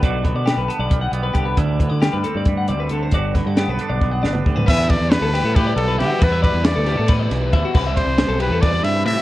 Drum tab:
CC |--------------|--------------|--------------|x-------------|
RD |--------------|--------------|--------------|--x-x-x-x-x-x-|
HH |x-x-x-x-x-x-x-|x-x-x-x-x-x-x-|x-x-x-x-------|--------------|
SD |----o---------|----o---o-----|--o-o-----o---|----o-o-----o-|
T2 |--------------|--------------|-----------o--|--------------|
FT |--------------|--------------|-------------o|--------------|
BD |o-o-----o---o-|o-o-----o-----|o-o-----o---o-|o-o-----o-----|

CC |--------------|x-------------|
RD |x-x-x-x-x-x-x-|--x-x-x-x-x-x-|
HH |--------------|--------------|
SD |----o-o---o---|----o---o-o---|
T2 |--------------|--------------|
FT |--------------|--------------|
BD |o-o-----o---o-|o-o-----o-----|